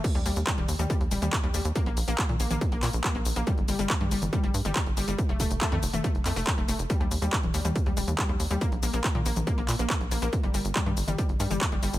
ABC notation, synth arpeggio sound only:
X:1
M:4/4
L:1/16
Q:1/4=140
K:Eblyd
V:1 name="Synth arpeggio sound" clef=bass
z G, G, z G, G, z G, G, z G, G, z G, G, z | B, B, z B, B, z B, B, z B, B, z B, B, z B, | G, z G, G, z G, G, z G, G, z G, G, z G, G, | z A, A, z A, A, z A, A, z A, A, z A, A, z |
G, G, z G, G, z G, G, z G, G, z G, G, z G, | B, z B, B, z B, B, z B, B, z B, B, z B, B, | z G, G, z G, G, z G, G, z G, G, z G, G, z |]